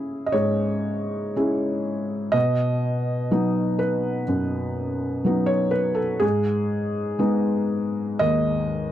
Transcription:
felt piano
Already playing: C#3 C#4 E4 G#4
0.26 D#5
0.32 G#2 C#5
1.36 C#4 E4 G#4
2.32 B2 D#5
3.31 F#3 B3 D#4
3.79 B4
4.28 F#2
5.24 F#3 B3 D#4
5.46 C#5
5.71 B4
5.95 A4
6.20 G#2 G#4
7.19 G#3 B3 D#4
8.19 D#2 D#5

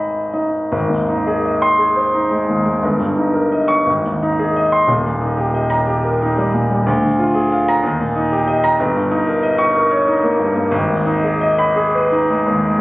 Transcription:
grand piano
Already playing: G#1 D#4 D#5 G#5 B5
0.33 D#4 D#5
0.72 G#1
0.90 D#2
1.09 D#4
1.27 G#4
1.45 D#5
1.62 C6
1.78 G#4
1.96 C5
2.13 D#4
2.31 G#3
2.49 D#2
2.65 G#3
2.83 G1
2.99 G2
3.16 D#4
3.34 A#4
3.52 D#5
3.68 C#6
3.86 G#1
4.04 D#2
4.22 D#4
4.39 G#4
4.56 D#5
4.72 C6
4.88 D#1 D#2
5.05 A#2
5.21 D#4
5.37 G4
5.54 D#5
5.70 A#5
5.86 G4
6.05 A#4
6.22 D#4
6.38 G3
6.54 A#2
6.70 G3
6.86 D2
7.03 D3
7.19 F4
7.35 G#4
7.51 F5
7.68 A#5
7.83 D#2
8.00 A#2
8.16 D#4
8.32 G4
8.47 D#5
8.64 A#5
8.79 G1
8.95 G2
9.11 D#4
9.27 A#4
9.43 D#5
9.58 C#6
9.75 A#4
9.91 C#5
10.08 D#4
10.23 A#3
10.39 G2
10.55 A#3
10.71 G#1
10.89 D#2
11.06 D#4
11.24 G#4
11.41 D#5
11.59 B5
11.76 G#4
11.95 B4
12.12 D#4
12.30 G#3
12.47 D#2
12.63 G#3

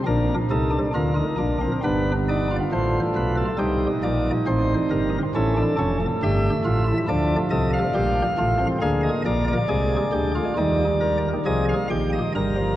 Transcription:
pipe organ
0.06 A#1 A#2 D4 A#4
0.50 C2 C3 D#4 A4
0.71 D4
0.94 D2 D3 F4 A#4
1.16 D#4
1.38 A#1 A#2 D4
1.61 C4
1.84 G1 G2 B3 D4 B4
2.29 D#4 D5
2.51 F4
2.72 A1 A2 A3 C5
3.15 B1 B2 B4
3.37 A4
3.58 C2 C3 G3 D#4 G4
4.03 A#1 A#2 A#3 D5
4.47 A1 A2 C4 C5
4.91 G1 G2 A#4
5.35 A1 A2 C#4 E4 A4
5.57 D4
5.78 F1 F2 C#4 A4
6.00 A3
6.23 G1 G2 G4 E5
6.65 A1 A2 F4
6.87 E4
7.08 D2 D3 F3 D4 D5
7.50 C2 C3 A4 D#5
7.73 F5
7.95 A#1 A#2 G3 G4
8.38 A1 A2 A3 F4
8.59 C4
8.82 D2 D3 A#3 G#4 F5
9.03 D#5
9.26 A#1 A#2 A#4 D5
9.48 D5
9.69 C2 C3 G#3 G#4
10.12 D2 D3 G4
10.35 F4
10.57 D#2 D#3 G3 D#4
11.01 A#4
11.46 C2 C3 F3 G#4 D#5
11.69 F5
11.90 A#1 A#2 D#3 G4 G5
12.13 D#5
12.35 G1 G2 G3 A#4 A#5
12.57 F3

